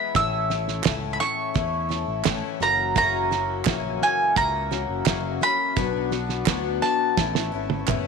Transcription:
0.00 0.12 E3 medium
0.00 0.14 E3 soft
0.00 0.16 G#3 soft
0.00 0.11 B3 medium
0.00 0.15 B3 medium
0.00 0.15 E4 medium
0.00 0.12 G#4 medium
0.00 5.73 E5 medium
0.00 0.16 B5 medium
0.14 0.81 A1 loud
0.14 0.50 A2 medium
0.14 0.50 E3 medium
0.14 2.58 A3 medium
0.14 0.50 A3 medium
0.14 0.51 C#4 medium
0.14 0.49 E4 medium
0.14 2.58 A4 medium
0.14 2.58 C#5 medium
0.14 1.13 E6 loud
0.14 kick loud
0.14 snare soft
0.50 0.85 A3 soft
0.50 0.85 C#4 medium
0.50 0.85 E4 medium
0.50 snare soft
0.68 snare soft
0.84 1.17 C#2 loud
0.84 1.55 A2 medium
0.84 1.54 E3 medium
0.84 1.54 A3 medium
0.84 1.56 C#4 medium
0.84 1.57 E4 loud
0.84 kick medium
0.84 snare loud
0.84 clap loud
1.13 1.20 B5 medium
1.20 2.21 C#6 medium
1.20 snare soft
1.54 2.04 E2 loud
1.54 1.90 E3 medium
1.54 1.90 A3 medium
1.54 1.89 C#4 medium
1.54 1.88 E4 medium
1.54 kick loud
1.54 snare soft
1.89 2.24 A3 soft
1.89 2.25 C#4 medium
1.89 2.25 E4 medium
1.89 snare soft
2.08 2.24 A1 medium
2.24 2.42 A1 loud
2.24 2.60 A2 medium
2.24 2.60 E3 medium
2.24 2.60 A3 medium
2.24 2.60 C#4 medium
2.24 2.60 E4 loud
2.24 kick loud
2.24 snare loud
2.24 clap loud
2.60 3.62 F#1 loud
2.60 2.95 E3 soft
2.60 5.74 F#3 medium
2.60 5.74 A#3 medium
2.60 2.96 A#3 medium
2.60 2.96 C#4 medium
2.60 2.95 F#4 medium
2.60 5.74 F#4 medium
2.60 2.97 A#5 loud
2.60 snare soft
2.96 3.31 F#2 medium
2.96 3.31 C#3 medium
2.96 3.31 E3 medium
2.96 3.31 A#3 medium
2.96 3.31 C#4 medium
2.96 3.30 F#4 loud
2.96 4.03 A#5 loud
2.96 kick loud
2.96 snare soft
3.31 3.65 A#3 medium
3.31 3.66 C#4 medium
3.31 3.66 F#4 medium
3.31 snare soft
3.65 3.98 A#1 medium
3.65 4.36 F#2 medium
3.65 4.36 C#3 loud
3.65 4.35 E3 medium
3.65 4.36 A#3 medium
3.65 4.37 C#4 medium
3.65 4.37 F#4 loud
3.65 kick loud
3.65 snare loud
3.65 clap loud
4.02 4.37 G#5 loud
4.02 snare soft
4.36 4.85 C#2 loud
4.36 4.71 E3 medium
4.36 4.71 A#3 medium
4.36 4.71 C#4 medium
4.36 4.70 F#4 medium
4.36 5.43 A#5 loud
4.36 kick loud
4.36 snare soft
4.71 5.06 E3 soft
4.71 5.06 A#3 medium
4.71 5.06 C#4 medium
4.71 5.06 F#4 medium
4.71 snare soft
4.89 5.05 F#1 medium
5.06 5.39 F#1 loud
5.06 5.41 F#2 medium
5.06 5.41 C#3 medium
5.06 5.42 E3 medium
5.06 5.42 A#3 medium
5.06 5.41 C#4 medium
5.06 5.40 F#4 medium
5.06 kick loud
5.06 snare loud
5.06 clap loud
5.41 5.76 E3 soft
5.41 5.77 A#3 medium
5.41 5.77 C#4 medium
5.41 5.76 F#4 medium
5.41 6.79 B5 loud
5.41 snare soft
5.76 6.43 B1 loud
5.76 6.11 B2 medium
5.76 6.12 F#3 medium
5.76 7.15 B3 medium
5.76 6.12 B3 medium
5.76 6.12 D4 loud
5.76 6.10 F#4 medium
5.76 8.07 B4 medium
5.76 7.16 D5 medium
5.76 7.15 F#5 medium
5.76 kick loud
5.76 snare soft
6.11 6.47 B3 medium
6.11 6.47 D4 medium
6.11 6.47 F#4 medium
6.11 snare soft
6.29 snare soft
6.46 6.79 D2 loud
6.46 7.17 B2 medium
6.46 7.17 F#3 medium
6.46 7.17 B3 loud
6.46 7.18 D4 loud
6.46 7.19 F#4 loud
6.46 kick medium
6.46 snare loud
6.46 clap loud
6.82 7.84 A5 medium
6.82 snare soft
7.17 7.50 A1 loud
7.17 7.52 E3 medium
7.17 8.07 A3 medium
7.17 7.53 B3 medium
7.17 7.52 C#4 medium
7.17 7.51 E4 medium
7.17 8.07 A4 medium
7.17 8.07 C#5 medium
7.17 kick loud
7.17 snare medium
7.35 snare medium
7.52 7.85 G#1 medium
7.52 7.87 B3 soft
7.52 7.88 C#4 medium
7.52 7.87 E4 medium
7.70 high tom medium
7.87 8.07 F#1 medium
7.87 8.07 A2 medium
7.87 8.07 E3 medium
7.87 8.07 B3 medium
7.87 8.07 C#4 loud
7.87 8.07 E4 medium
7.87 kick loud
7.87 clap loud
7.87 mid tom loud

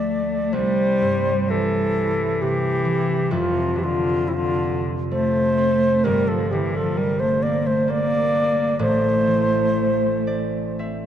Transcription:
0.00 0.58 D2 medium
0.00 0.58 F3 soft
0.00 0.55 A3 medium
0.00 1.30 D4 soft
0.00 1.12 E4 soft
0.00 0.54 D5 medium
0.53 3.36 C2 medium
0.53 1.52 G3 medium
0.53 1.52 C5 loud
1.02 2.47 G2 soft
1.50 2.44 E3 medium
1.50 2.43 A4 medium
2.42 3.36 C3 soft
2.42 3.34 E3 medium
2.42 3.33 G4 medium
2.85 3.36 E3 medium
3.31 6.10 F1 medium
3.31 6.10 F2 medium
3.31 3.79 C3 medium
3.31 3.80 F4 loud
3.76 6.10 C3 soft
3.76 3.86 E3 medium
3.76 3.85 G4 medium
3.83 4.32 D3 medium
3.83 4.29 F4 medium
4.28 4.37 C3 medium
4.28 4.35 E4 medium
4.34 4.86 D3 medium
4.34 4.86 F4 medium
5.11 7.94 A3 medium
5.11 6.07 A3 medium
5.11 6.05 C5 medium
5.58 8.58 C4 medium
6.04 8.85 G1 medium
6.04 8.85 G2 medium
6.04 6.31 G3 medium
6.04 6.29 A#4 loud
6.28 6.55 F3 medium
6.28 6.53 A4 medium
6.51 8.85 D3 medium
6.51 6.78 E3 medium
6.51 6.76 G4 medium
6.75 6.99 F3 medium
6.75 6.98 A4 medium
6.97 7.22 G3 medium
6.97 7.21 A#4 medium
7.20 7.45 A3 medium
7.20 7.44 C5 medium
7.43 7.68 A#3 medium
7.43 7.68 D5 medium
7.66 7.92 A3 medium
7.66 7.92 C5 medium
7.88 8.85 A#3 soft
7.88 8.81 A#3 medium
7.88 8.81 D5 loud
8.34 11.06 D4 medium
8.79 11.06 A1 medium
8.79 11.06 A2 medium
8.79 10.76 A3 medium
8.79 10.76 C5 loud
9.27 11.06 E3 medium
10.27 11.06 D5 medium
10.79 11.06 C4 soft
10.79 11.06 E5 soft

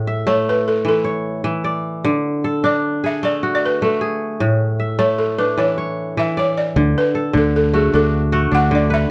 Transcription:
0.00 2.03 A2 medium
0.00 0.26 A3 medium
0.00 0.17 F#4 medium
0.00 0.33 G#4 medium
0.07 1.11 E5 medium
0.27 2.26 A3 medium
0.27 0.47 C#5 medium
0.49 0.68 B4 medium
0.68 0.87 A4 medium
0.85 1.43 E3 medium
0.85 1.62 A4 medium
1.04 1.70 C#5 medium
1.44 2.09 E3 medium
1.64 2.75 D5 medium
2.04 4.38 D3 medium
2.44 3.10 A4 medium
2.64 4.32 D4 medium
2.64 3.05 D5 medium
3.04 3.88 G#4 medium
3.04 3.23 E5 medium
3.23 3.82 A3 medium
3.23 3.54 D5 medium
3.43 4.89 F#4 medium
3.55 3.62 D5 medium
3.66 3.83 B4 medium
3.82 4.98 A3 medium
3.82 4.24 A4 medium
4.01 5.05 G#4 medium
4.40 6.74 A2 medium
4.80 5.83 E5 medium
4.99 6.98 A3 medium
4.99 5.17 C#5 medium
5.18 5.39 A4 medium
5.38 7.06 D4 medium
5.38 5.47 B4 medium
5.58 6.16 E3 medium
5.58 6.33 C#5 medium
5.78 6.43 C#5 medium
6.17 6.80 E3 medium
6.17 6.38 E5 medium
6.37 6.47 C#5 medium
6.37 7.48 D5 medium
6.58 6.97 D5 medium
6.76 6.93 D2 medium
6.76 7.32 D3 medium
6.98 7.37 B4 medium
7.15 8.47 A4 medium
7.33 7.88 D2 medium
7.33 8.70 D3 medium
7.37 7.55 A4 medium
7.56 7.75 A4 medium
7.73 8.32 A3 medium
7.73 8.32 F#4 medium
7.73 7.95 G#4 medium
7.93 8.46 D2 medium
7.93 8.51 D4 medium
7.93 8.55 A4 medium
8.32 9.11 A3 medium
8.32 9.11 F#4 medium
8.52 9.05 D2 medium
8.52 9.11 D4 medium
8.52 8.73 F#5 loud
8.71 9.11 D3 medium
8.71 8.93 D5 medium
8.90 9.11 B4 medium
8.90 9.11 E5 medium

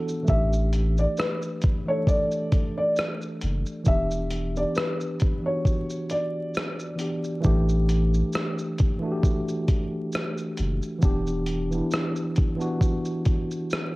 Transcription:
0.00 0.23 E3 medium
0.00 0.30 B3 medium
0.00 0.30 D4 medium
0.00 0.30 F#4 loud
0.00 0.26 A4 loud
0.09 shaker soft
0.23 1.71 E3 medium
0.23 1.72 A3 medium
0.23 0.34 C#4 medium
0.28 1.06 A1 loud
0.28 1.74 G4 loud
0.28 0.94 E5 medium
0.28 kick loud
0.28 shaker medium
0.33 1.77 D4 medium
0.53 shaker soft
0.73 closed hi-hat medium
0.73 shaker soft
0.98 1.16 D5 medium
0.98 shaker soft
1.17 1.84 B4 medium
1.17 cross-stick loud
1.17 shaker medium
1.42 shaker soft
1.62 kick loud
1.62 closed hi-hat medium
1.62 shaker soft
1.85 3.50 E3 medium
1.85 3.51 A3 medium
1.85 2.06 C#5 medium
1.90 3.53 D4 medium
1.90 3.53 A4 medium
2.07 2.73 D5 medium
2.07 kick medium
2.07 shaker medium
2.31 shaker soft
2.52 kick loud
2.52 closed hi-hat medium
2.52 shaker soft
2.77 2.95 D5 medium
2.96 cross-stick medium
2.96 shaker medium
3.21 shaker soft
3.41 3.64 F#1 loud
3.41 closed hi-hat medium
3.41 shaker soft
3.66 shaker soft
3.83 4.64 E1 loud
3.83 4.49 E3 medium
3.83 4.50 B3 medium
3.83 4.51 D4 medium
3.83 kick loud
3.83 shaker medium
3.88 4.52 G4 medium
3.88 4.56 E5 loud
4.11 shaker soft
4.31 closed hi-hat medium
4.31 shaker soft
4.54 5.37 E3 medium
4.54 5.38 B3 medium
4.54 4.75 D5 medium
4.54 shaker soft
4.58 5.39 D4 medium
4.58 5.40 G4 medium
4.75 5.42 B4 medium
4.75 cross-stick loud
4.75 shaker medium
5.01 shaker soft
5.20 kick loud
5.20 closed hi-hat medium
5.20 shaker soft
5.42 6.87 E3 medium
5.42 6.88 B3 medium
5.46 6.89 D4 medium
5.46 6.90 F#4 medium
5.46 6.07 C#5 medium
5.65 kick medium
5.65 shaker medium
5.90 shaker medium
6.10 7.41 D5 medium
6.10 closed hi-hat medium
6.10 shaker soft
6.55 cross-stick loud
6.55 shaker medium
6.80 shaker soft
6.96 7.39 E3 medium
6.96 7.40 B3 medium
6.96 7.41 D4 medium
6.96 closed hi-hat medium
6.96 shaker medium
7.01 7.42 G4 medium
7.24 shaker soft
7.40 8.88 E3 loud
7.40 8.89 A3 loud
7.40 shaker medium
7.44 8.22 A1 loud
7.44 8.90 D4 medium
7.44 8.91 G4 loud
7.44 kick loud
7.69 shaker soft
7.89 closed hi-hat medium
7.89 shaker soft
8.14 shaker soft
8.33 cross-stick loud
8.33 shaker medium
8.59 shaker soft
8.78 kick loud
8.78 closed hi-hat medium
8.78 shaker soft
8.99 10.65 E3 medium
8.99 10.67 A3 medium
9.03 10.68 D4 medium
9.03 9.10 F#4 medium
9.12 10.72 G4 loud
9.23 kick medium
9.23 shaker medium
9.48 shaker soft
9.68 kick loud
9.68 closed hi-hat medium
9.68 shaker soft
10.12 cross-stick loud
10.12 shaker medium
10.38 shaker soft
10.57 10.80 F#1 medium
10.57 closed hi-hat medium
10.57 shaker soft
10.83 shaker soft
10.99 11.65 E3 medium
10.99 11.66 B3 medium
10.99 kick loud
10.99 shaker medium
11.03 11.80 E1 loud
11.03 11.67 D4 loud
11.03 11.68 G4 loud
11.27 shaker soft
11.46 closed hi-hat medium
11.46 shaker soft
11.71 12.54 E3 medium
11.71 12.55 B3 medium
11.71 12.55 D4 medium
11.71 shaker soft
11.77 12.56 E4 medium
11.91 cross-stick loud
11.91 shaker medium
12.16 shaker soft
12.36 kick loud
12.36 closed hi-hat medium
12.36 shaker soft
12.56 13.96 E3 loud
12.56 13.96 B3 medium
12.56 13.96 D4 medium
12.61 13.96 F#4 loud
12.61 shaker soft
12.81 kick medium
12.81 shaker medium
13.05 shaker soft
13.25 kick medium
13.25 closed hi-hat medium
13.25 shaker soft
13.51 shaker soft
13.70 cross-stick loud
13.70 shaker medium

